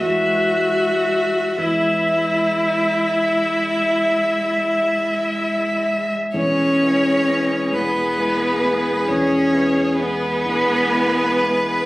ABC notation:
X:1
M:12/8
L:1/8
Q:3/8=41
K:E
V:1 name="Violin"
e3 e8- e | c3 B3 c2 B4 |]
V:2 name="Viola"
F3 E8 z | G12 |]
V:3 name="Cello"
G,3 G,8- G, | C3 B,3 C2 B,4 |]
V:4 name="Grand piano"
[E,,G,B,E]3 [E,,G,B,E]8- [E,,G,B,E] | [E,,,E,,] [G,B,E] [G,B,E] [E,,,E,,] [G,B,E] [G,B,E] [E,,,E,,] [G,B,E] [G,B,E] [E,,,E,,] [G,B,E] [G,B,E] |]